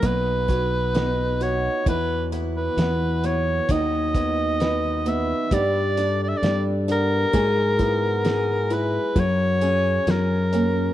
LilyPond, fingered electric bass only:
\new Staff \with { instrumentName = "Fingered electric bass" } { \clef bass \time 4/4 \key b \major \tempo 4 = 66 b,,2 e,4 e,4 | dis,2 g,4 g,4 | gis,2 fis,4 fis,4 | }